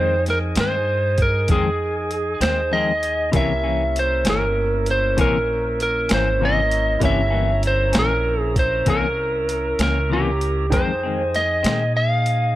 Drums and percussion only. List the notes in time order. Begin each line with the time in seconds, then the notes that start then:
0.26 snare, closed hi-hat
0.55 snare, closed hi-hat
1.18 kick, closed hi-hat
1.48 kick, closed hi-hat
2.11 closed hi-hat
2.41 snare, closed hi-hat
3.03 closed hi-hat
3.33 kick, closed hi-hat
3.96 closed hi-hat
4.25 snare, closed hi-hat
4.86 closed hi-hat
5.18 kick, closed hi-hat
5.80 closed hi-hat
6.09 snare, closed hi-hat
6.71 closed hi-hat
7.01 kick, closed hi-hat
7.63 closed hi-hat
7.93 snare, closed hi-hat
8.56 kick, closed hi-hat
8.86 kick, closed hi-hat
9.49 closed hi-hat
9.79 snare, closed hi-hat
10.41 closed hi-hat
10.72 kick, closed hi-hat
11.34 snare, closed hi-hat
11.64 snare, closed hi-hat
12.26 closed hi-hat